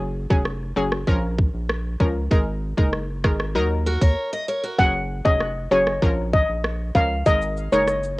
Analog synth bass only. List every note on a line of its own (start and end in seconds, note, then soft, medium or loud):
0.00 0.26 F#1 loud
0.31 0.73 F1 medium
0.77 1.05 F#1 medium
1.07 1.50 A#1 loud
1.54 1.96 A#1 medium
2.00 2.28 C#2 medium
2.31 2.74 G#1 loud
2.78 3.26 F#1 medium
3.24 3.57 G#1 medium
3.55 3.98 D#2 loud
4.01 4.15 D#2 medium
4.79 5.21 F#1 loud
5.25 5.68 F1 medium
5.71 6.00 F#1 medium
6.02 6.45 A#1 loud
6.49 6.91 A#1 medium
6.95 7.23 C#2 medium
7.26 7.68 G#1 loud
7.72 8.20 F#1 medium